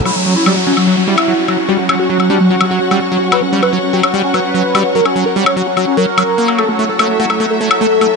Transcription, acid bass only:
X:1
M:4/4
L:1/8
Q:1/4=147
K:none
V:1 name="Acid bass" clef=bass
^F, F, G, F, F, G, F, F, | G, ^F, F, G, F, F, G, F, | ^F, G, F, F, G, F, F, G, | ^F, F, G, F, F, F, F, ^A, |
A, A, A, A, A, A, A, A, |]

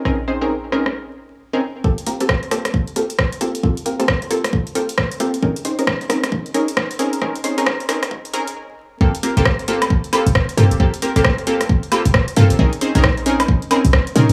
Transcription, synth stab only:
X:1
M:4/4
L:1/16
Q:"Swing 16ths" 1/4=134
K:Bblyd
V:1 name="Synth stab"
[C_D_E_AB] z [CDEAc] [CDEAB] z2 [CDEAB] z6 [CDEAB] z2 | [B,CFGA] z [B,CFGB] [B,CFGA] z2 [B,CFGA] z3 [B,CFGA] z3 [B,CFGA]2 | [B,CFGA] z [B,CFGB] [B,CFGA] z2 [B,CFGA] z3 [B,CFGA] z3 [B,CFGA]2 | [C_D_E_AB] z [CDEAc] [CDEAB] z2 [CDEAB] z3 [CDEAB] z3 [CDEAB]2 |
[C_D_E_AB] z [CDEAc] [CDEAB] z2 [CDEAB] z3 [CDEAB] z4 z | [B,CFGA] z [B,CFGB] [B,CFGA] z2 [B,CFGA] z3 [B,CFGA] z3 [B,CFGA]2 | [B,CFGA] z [B,CFGB] [B,CFGA] z2 [B,CFGA] z3 [B,CFGA] z3 [B,CFGA]2 | [C_D_E_AB] z [CDEAc] [CDEAB] z2 [CDEAB] z3 [CDEAB] z3 [CDEAB]2 |]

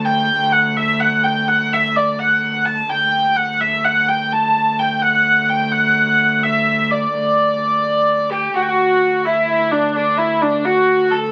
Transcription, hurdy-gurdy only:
X:1
M:6/8
L:1/8
Q:3/8=85
K:D
V:1 name="Hurdy-gurdy"
g2 f e f g | f e d f2 a | g2 f e f g | a2 g f2 g |
f3 e2 d | d4- d G | F3 E2 D | D E D F2 A |]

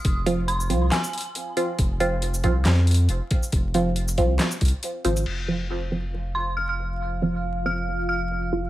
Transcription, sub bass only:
X:1
M:4/4
L:1/8
Q:"Swing 16ths" 1/4=138
K:Fm
V:1 name="Sub bass" clef=bass
F,,,3 C,, z4 | F,,,3 C,, F,,2 F,,, z | F,,,3 C,, z C,, z A,,, | F,,,8- |
F,,,8 |]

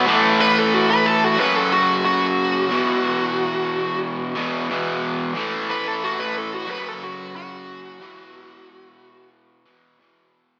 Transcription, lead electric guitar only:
X:1
M:4/4
L:1/16
Q:1/4=90
K:Emix
V:1 name="Lead electric guitar"
z2 B A F B A F B A F2 F4- | F8 z8 | z2 B A F B A F B A F2 F4- | F8 z8 |]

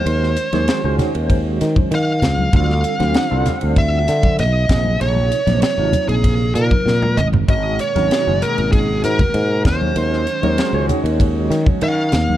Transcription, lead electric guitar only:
X:1
M:4/4
L:1/16
Q:1/4=97
K:Eblyd
V:1 name="Lead electric guitar"
c6 z6 f4 | f8 =e4 _e4 | _d4 d3 _A3 B4 e2 | e2 _d4 B2 _A2 B4 c2- |
c6 z6 f4 |]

